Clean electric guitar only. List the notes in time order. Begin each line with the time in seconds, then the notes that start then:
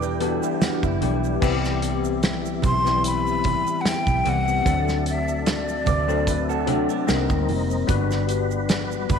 0.02 G4 B4
0.21 F#4 A4
0.43 E4 G4
0.62 D4 F#4
0.83 E4
5.87 B4 D5
6.09 A4 C5
6.27 B4
6.49 F#4 A4
6.68 D4 F#4
6.89 B3 D4